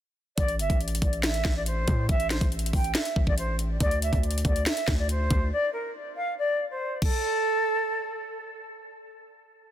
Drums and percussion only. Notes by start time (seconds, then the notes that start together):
0.38 kick, closed hi-hat
0.48 closed hi-hat
0.59 closed hi-hat
0.70 kick, closed hi-hat
0.81 closed hi-hat
0.88 closed hi-hat
0.95 closed hi-hat
1.02 kick, closed hi-hat
1.13 closed hi-hat
1.23 finger snap, snare, closed hi-hat
1.34 closed hi-hat
1.45 finger snap, kick, snare
1.66 closed hi-hat
1.88 kick, closed hi-hat
2.09 kick, closed hi-hat
2.20 closed hi-hat
2.30 finger snap, snare, closed hi-hat
2.41 kick, closed hi-hat
2.52 closed hi-hat
2.59 closed hi-hat
2.66 closed hi-hat
2.73 kick, open hi-hat
2.84 closed hi-hat
2.95 finger snap, snare, closed hi-hat
3.05 closed hi-hat
3.16 kick
3.27 kick
3.38 closed hi-hat
3.59 closed hi-hat
3.80 kick, closed hi-hat
3.91 closed hi-hat
4.02 closed hi-hat
4.13 kick, closed hi-hat
4.23 closed hi-hat
4.31 closed hi-hat
4.38 closed hi-hat
4.45 kick, closed hi-hat
4.56 closed hi-hat
4.66 finger snap, snare, closed hi-hat
4.77 closed hi-hat
4.88 finger snap, kick, snare
5.09 closed hi-hat
5.30 kick, closed hi-hat
7.02 kick, crash